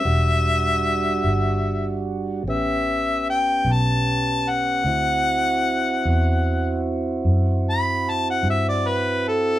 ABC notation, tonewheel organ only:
X:1
M:12/8
L:1/8
Q:3/8=50
K:D
V:1 name="Tonewheel organ"
[G,DF]6 [B,CG]6 | [=CEF]12 |]